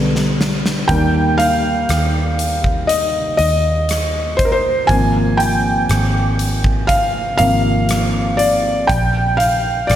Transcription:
Already playing: fingered electric bass B1, felt piano D3 G3 B3 B4
0.16 snare
0.41 snare
0.66 snare
0.88 fingered electric bass D#2, felt piano D#3 G3 A#3 G5, kick, closed hi-hat
1.38 felt piano F5, closed hi-hat
1.89 fingered electric bass D#2, cross-stick, closed hi-hat
2.39 closed hi-hat
2.64 kick
2.87 felt piano D#5, closed hi-hat
3.37 fingered electric bass D#2, felt piano D#5, closed hi-hat
3.89 cross-stick, closed hi-hat
4.37 felt piano C5, kick, closed hi-hat
4.45 felt piano A#4
4.52 felt piano C5
4.87 fingered electric bass G#1, felt piano C3 F3 A#3 G#5, kick, closed hi-hat
5.37 felt piano G5, closed hi-hat
5.89 fingered electric bass G#1, cross-stick, closed hi-hat
6.39 closed hi-hat
6.64 kick
6.87 felt piano F5, kick, closed hi-hat
7.38 fingered electric bass G#1, felt piano C3 F3 A#3 F5, closed hi-hat
7.89 cross-stick, closed hi-hat
8.37 felt piano D5, closed hi-hat
8.87 fingered electric bass A#1, felt piano G5, kick, closed hi-hat
9.37 felt piano F5, closed hi-hat
9.87 fingered electric bass A#1, felt piano D5, cross-stick, closed hi-hat

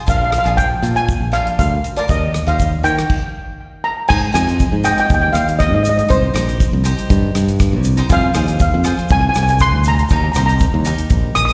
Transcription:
0.06 fingered electric bass A#1, cavaquinho D4 F4 A#4, steel pan F5, kick, closed hi-hat, shaker
0.17 steel pan F5
0.24 steel pan F5
0.31 steel pan F5, cross-stick, closed hi-hat, shaker
0.38 steel pan F5
0.44 fingered electric bass A#1, cavaquinho D4 F4 G#4, steel pan F5, closed hi-hat
0.57 steel pan G5, kick, closed hi-hat, shaker
0.82 fingered electric bass A#2, cavaquinho D4 F4 A#4, closed hi-hat, shaker
0.96 steel pan G#5, closed hi-hat
1.08 kick, closed hi-hat, shaker
1.20 fingered electric bass A#1
1.32 cavaquinho D4 F4 G4, steel pan F5, cross-stick, closed hi-hat
1.47 closed hi-hat
1.59 fingered electric bass D2, steel pan F5, kick, closed hi-hat, shaker
1.84 closed hi-hat, shaker
1.96 cavaquinho D4 F4 A#4, steel pan D5, closed hi-hat
2.08 fingered electric bass D#2, cavaquinho D#4 G4 A#4, steel pan D#5, kick, closed hi-hat, shaker
2.34 cross-stick, closed hi-hat, shaker
2.47 fingered electric bass D#2, cavaquinho D#4 G4 C5, steel pan F5, closed hi-hat
2.60 kick, closed hi-hat, shaker
2.83 fingered electric bass D#3, cavaquinho D#4 G4 C#5, steel pan G5, closed hi-hat, shaker
2.99 cross-stick, closed hi-hat
3.10 kick, crash
3.84 steel pan A#5
4.08 fingered electric bass G#2, cavaquinho D#4 G#4 C5, steel pan G#5, kick, crash, shaker
4.33 fingered electric bass F2, cavaquinho D#4 G#4 C5, steel pan G#5, cross-stick, closed hi-hat, shaker
4.49 closed hi-hat, shaker
4.60 kick, closed hi-hat, shaker
4.72 fingered electric bass G#2
4.84 cavaquinho D#4 G#4 D#5, steel pan G5, cross-stick, closed hi-hat, shaker
4.92 steel pan G5
4.98 steel pan G5, closed hi-hat
5.06 fingered electric bass D#2, steel pan G5, kick, closed hi-hat, shaker
5.14 steel pan G5
5.22 steel pan G5
5.33 fingered electric bass D#2, steel pan F5, cross-stick, closed hi-hat, shaker
5.48 closed hi-hat, shaker
5.59 steel pan D#5, kick, cross-stick, closed hi-hat, shaker
5.67 steel pan D#5
5.73 fingered electric bass G#2, steel pan D#5
5.83 steel pan D#5, closed hi-hat, shaker
5.89 steel pan D#5
5.98 steel pan D#5, closed hi-hat
6.08 fingered electric bass C2, cavaquinho D#4 G4 C5, steel pan C5, kick, closed hi-hat, shaker
6.34 fingered electric bass A#1, cavaquinho D#4 G4 C5, cross-stick, closed hi-hat, shaker
6.49 closed hi-hat, shaker
6.60 kick, closed hi-hat, shaker
6.73 fingered electric bass C2
6.84 cavaquinho D#4 G4 C5, closed hi-hat, shaker
6.99 closed hi-hat
7.10 fingered electric bass G2, kick, closed hi-hat, shaker
7.35 fingered electric bass G2, cross-stick, closed hi-hat, shaker
7.48 closed hi-hat, shaker
7.59 kick, cross-stick, closed hi-hat, shaker
7.73 fingered electric bass C2
7.84 closed hi-hat, shaker
7.97 cavaquinho D#4 G4 C5, closed hi-hat
8.09 fingered electric bass F2, cavaquinho F4 G#4 C5, steel pan F5, kick, closed hi-hat, shaker
8.34 fingered electric bass D#2, cavaquinho F4 G#4 C5, cross-stick, closed hi-hat, shaker
8.48 closed hi-hat, shaker
8.59 steel pan F5, kick, closed hi-hat, shaker
8.74 fingered electric bass F2
8.84 cavaquinho F4 G#4 C5, cross-stick, closed hi-hat, shaker
8.99 closed hi-hat
9.09 fingered electric bass C2, steel pan G#5, kick, closed hi-hat, shaker
9.21 steel pan G#5
9.29 steel pan G#5
9.34 fingered electric bass C2, steel pan G#5, cross-stick, closed hi-hat, shaker
9.43 steel pan G#5
9.47 steel pan G#5, closed hi-hat, shaker
9.59 steel pan C6, kick, cross-stick, closed hi-hat, shaker
9.74 fingered electric bass D2
9.84 closed hi-hat, shaker
9.88 steel pan A#5
9.95 steel pan A#5, closed hi-hat
10.03 steel pan A#5
10.09 fingered electric bass D#2, cavaquinho D#4 G4 A#4, steel pan A#5, kick, closed hi-hat, shaker
10.16 steel pan A#5
10.24 steel pan A#5
10.32 fingered electric bass C2, cavaquinho D#4 G4, steel pan A#5, shaker
10.36 cavaquinho C5, steel pan A#5, cross-stick, closed hi-hat
10.46 steel pan A#5, closed hi-hat, shaker
10.59 kick, closed hi-hat, shaker
10.74 fingered electric bass D#2
10.85 cavaquinho D#4 G4 A#4, closed hi-hat, shaker
10.98 closed hi-hat, shaker
11.10 fingered electric bass A#1, kick, closed hi-hat, shaker
11.35 fingered electric bass A#1, steel pan D#6, cross-stick, closed hi-hat, shaker
11.45 steel pan D#6, closed hi-hat, shaker

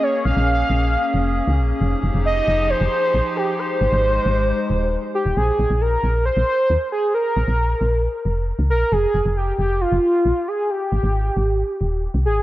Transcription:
Already playing: ambient pad A#3 C#4 G#4
0.03 soft synth lead C#5
0.26 fm bass A#1, soft synth lead F5
0.37 fm bass A#1
0.70 fm bass A#1
1.14 fm bass F1
1.48 fm bass C#2
1.59 fm bass A#1
1.81 fm bass F1, ambient pad F3 D#4 G4
2.03 fm bass F1
2.14 fm bass F1
2.25 soft synth lead D#5
2.48 fm bass F1
2.70 soft synth lead C5
2.81 fm bass F1
3.14 fm bass A#1
3.37 soft synth lead G4
3.59 ambient pad G#3 C5, soft synth lead C5
3.81 fm bass G#1
3.92 fm bass G#1
4.25 fm bass G#1
4.70 fm bass D#1
5.14 soft synth lead G4
5.25 fm bass D#1
5.37 fm bass A#1, soft synth lead G#4
5.59 fm bass A#1
5.70 fm bass A#1
5.81 soft synth lead A#4
6.03 fm bass A#1
6.25 soft synth lead C5
6.37 fm bass A#1
6.70 fm bass D#2
6.92 soft synth lead G#4
7.14 soft synth lead A#4
7.37 fm bass A#1
7.48 fm bass A#1
7.81 fm bass A#1
8.25 fm bass F1
8.59 fm bass C#2
8.70 fm bass A#1, soft synth lead A#4
8.92 fm bass F1, soft synth lead G#4
9.14 fm bass F1
9.25 fm bass F1
9.37 soft synth lead G4
9.59 fm bass F1, soft synth lead G4
9.81 soft synth lead F4
9.92 fm bass F1
10.25 fm bass A#1
10.48 soft synth lead G#4
10.70 soft synth lead G4
10.92 fm bass G#1
11.03 fm bass G#1
11.37 fm bass G#1
11.81 fm bass D#1
12.14 fm bass C2
12.25 fm bass G#1, soft synth lead G#4

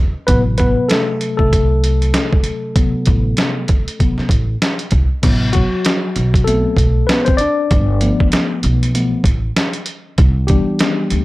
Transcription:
Already playing: upright bass E2
0.27 upright bass A1, tine electric piano C3 F#3 B3 B4, kick, closed hi-hat
0.58 tine electric piano B3 B4, kick, closed hi-hat
0.89 tine electric piano A3 A4, snare, closed hi-hat
1.21 closed hi-hat
1.37 upright bass C2, tine electric piano A3 A4, kick
1.53 kick, closed hi-hat
1.84 closed hi-hat
2.02 closed hi-hat
2.14 snare, closed hi-hat
2.33 kick
2.44 closed hi-hat
2.75 tine electric piano C3 F#3 B3, kick, closed hi-hat
3.06 upright bass A1, kick, closed hi-hat
3.37 snare, closed hi-hat
3.68 kick, closed hi-hat
3.88 closed hi-hat
3.99 tine electric piano C3 F#3 B3, kick, closed hi-hat
4.18 muted upright bass stroke, snare
4.29 upright bass A1, kick, closed hi-hat
4.62 snare, closed hi-hat
4.79 closed hi-hat
4.91 upright bass C2, kick, closed hi-hat
5.23 upright bass A1, tine electric piano C3 F#3 B3, kick, closed hi-hat, crash
5.53 tine electric piano F#3 F#4, kick, closed hi-hat
5.85 snare, closed hi-hat
6.16 upright bass B1, closed hi-hat
6.34 kick, closed hi-hat
6.44 tine electric piano F#3 A3 B3 C4 A4, closed hi-hat
6.77 upright bass B1, kick, closed hi-hat
7.07 tine electric piano B3 B4, snare, closed hi-hat
7.25 tine electric piano C4 C5, kick, closed hi-hat
7.37 tine electric piano D4 D5, closed hi-hat
7.71 upright bass G1, kick, closed hi-hat
8.01 tine electric piano F3 A3 B3, closed hi-hat
8.20 kick
8.32 snare, closed hi-hat
8.63 upright bass B1, closed hi-hat
8.83 closed hi-hat
8.94 tine electric piano F3 A3 B3, closed hi-hat
9.24 upright bass A1, kick, closed hi-hat
9.56 snare, closed hi-hat
9.73 closed hi-hat
9.86 closed hi-hat
10.18 upright bass C2, kick, closed hi-hat
10.47 tine electric piano E3 G3 B3 D4 G4, kick, closed hi-hat
10.79 snare, closed hi-hat
11.10 upright bass D2, closed hi-hat

